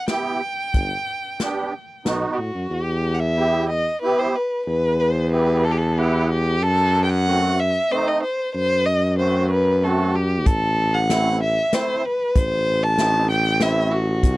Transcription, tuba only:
0.74 0.94 G1 medium
2.05 2.25 B1 medium
2.38 2.53 A2 medium
2.54 2.69 F#2 medium
2.70 3.88 E2 loud
4.67 6.63 E2 loud
6.61 7.77 F#2 loud
8.55 10.48 F#2 loud
10.46 11.60 A1 loud
12.35 14.24 A1 loud
14.23 14.37 C2 loud

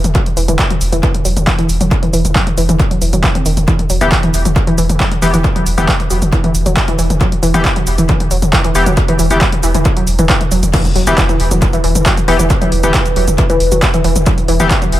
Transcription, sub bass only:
0.04 0.15 E1 medium
0.37 0.48 E1 loud
0.48 0.59 E1 medium
0.81 0.92 E1 loud
0.92 1.03 E1 medium
1.25 1.36 E1 loud
1.36 1.47 E1 medium
1.69 1.80 E1 medium
1.81 1.91 E1 medium
2.13 2.24 E1 loud
2.25 2.35 E1 medium
2.57 2.68 E1 loud
2.69 2.79 E1 medium
3.01 3.12 E1 loud
3.13 3.23 E1 medium
3.46 3.56 E1 medium
3.57 3.68 E1 medium
3.90 4.01 E1 loud
4.01 4.12 E1 medium
4.34 4.45 E1 loud
4.45 4.56 E1 medium
4.78 4.89 E1 loud
4.89 5.00 E1 medium
5.22 5.33 E1 medium
5.34 5.44 E1 medium
5.66 5.77 E1 loud
5.78 5.88 E1 medium
6.10 6.21 E1 loud
6.22 6.32 E1 medium
6.54 6.65 E1 loud
6.66 6.76 E1 medium
6.99 7.09 E1 loud
7.10 7.20 E1 medium
7.43 7.54 E1 loud
7.54 7.65 E1 medium
7.87 7.98 E1 loud
7.98 8.09 E1 medium
8.31 8.42 E1 loud
8.42 8.53 E1 medium
8.75 8.86 E1 loud
8.87 8.97 E1 medium
9.19 9.30 E1 loud
9.31 9.41 E1 medium
9.63 9.74 E1 loud
9.75 9.85 E1 medium
10.07 10.18 E1 loud
10.19 10.29 E1 medium
10.52 10.62 E1 loud
10.63 10.73 E1 medium
10.96 11.07 E1 loud
11.07 11.18 E1 medium
11.40 11.51 E1 loud
11.51 11.62 E1 medium
11.84 11.95 E1 loud
11.95 12.06 E1 medium
12.28 12.39 E1 loud
12.39 12.50 E1 medium
12.72 12.83 E1 loud
12.84 12.94 E1 medium
13.16 13.27 E1 loud
13.28 13.38 E1 medium
13.60 13.71 E1 loud
13.72 13.82 E1 medium
14.04 14.15 E1 loud
14.16 14.26 E1 medium
14.48 14.59 E1 loud
14.60 14.70 E1 medium
14.93 15.00 E1 loud

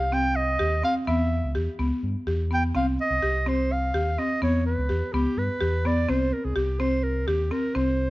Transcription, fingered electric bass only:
0.00 0.56 C2 medium
0.60 0.81 D#2 medium
1.08 1.40 E2 medium
1.44 1.54 C#2 medium
1.56 1.66 E2 medium
1.79 1.90 C#2 medium
2.03 2.14 G2 medium
2.27 2.71 E2 medium
2.75 2.96 C2 medium
3.10 3.21 C2 medium
3.23 3.90 C2 medium
3.94 4.16 D#2 medium
4.42 4.74 E2 medium
4.78 4.89 C#2 medium
4.90 5.00 E2 medium
5.13 5.24 C#2 medium
5.37 5.48 G2 medium
5.61 6.05 E2 medium
6.09 6.31 C2 medium
6.45 6.55 C2 medium
6.56 7.24 C2 medium
7.27 7.49 D#2 medium
7.76 8.08 C2 medium

